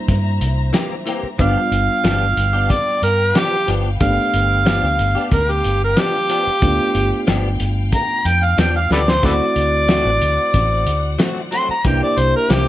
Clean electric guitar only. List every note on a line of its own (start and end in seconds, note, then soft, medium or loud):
0.73 0.93 E3 medium
0.73 0.94 A#3 medium
0.73 0.94 C4 medium
0.73 0.94 G4 medium
1.06 1.26 E3 medium
1.06 1.27 A#3 medium
1.06 1.27 C4 medium
1.06 1.28 G4 medium
1.38 1.59 F3 medium
1.38 1.59 B3 medium
1.38 1.60 D4 medium
1.38 1.60 G4 medium
2.04 2.24 F3 medium
2.04 2.25 B3 medium
2.04 2.25 D4 medium
2.04 2.25 G4 medium
2.53 2.74 B3 soft
2.53 2.74 D4 soft
2.53 2.73 G4 medium
3.35 3.55 F3 medium
3.35 3.55 B3 medium
3.35 3.56 D4 medium
3.35 3.56 G4 medium
3.67 3.88 F3 medium
3.67 3.88 B3 medium
3.67 3.89 D4 medium
3.67 3.89 G4 medium
4.65 4.86 F3 medium
4.65 4.86 B3 medium
4.65 4.87 D4 medium
4.65 4.87 G4 medium
5.15 5.36 B3 soft
5.15 5.35 D4 medium
5.15 5.35 G4 medium
5.96 6.17 F3 medium
5.96 6.17 B3 medium
5.96 6.17 D4 medium
5.96 6.18 G4 medium
6.29 6.49 F3 medium
6.29 6.50 B3 medium
6.29 6.50 D4 medium
6.29 6.51 G4 medium
7.27 7.47 F3 medium
7.27 7.48 B3 medium
7.27 7.48 D4 medium
7.27 7.48 G4 loud
8.58 8.78 F3 medium
8.58 8.78 B3 medium
8.58 8.79 D4 medium
8.58 8.79 G4 medium
8.90 9.10 F3 medium
8.90 9.11 B3 medium
8.90 9.11 D4 medium
8.90 9.12 G4 medium
9.22 9.43 F#3 medium
9.22 9.43 A3 medium
9.22 9.44 C4 medium
9.22 9.44 F#4 medium
9.88 10.09 F#3 medium
9.88 10.09 A3 medium
9.88 10.09 C4 medium
9.88 10.10 F#4 medium
11.19 11.39 F#3 medium
11.19 11.40 A3 medium
11.19 11.40 C4 medium
11.19 11.40 F#4 medium
11.51 11.72 F#3 medium
11.51 11.72 A3 medium
11.51 11.73 C4 medium
11.51 11.73 F#4 medium
11.84 12.05 E3 medium
11.84 12.05 A#3 medium
11.84 12.05 C4 medium
11.84 12.06 G4 medium
12.49 12.68 E3 medium
12.49 12.68 A#3 medium
12.49 12.68 C4 medium
12.49 12.68 G4 medium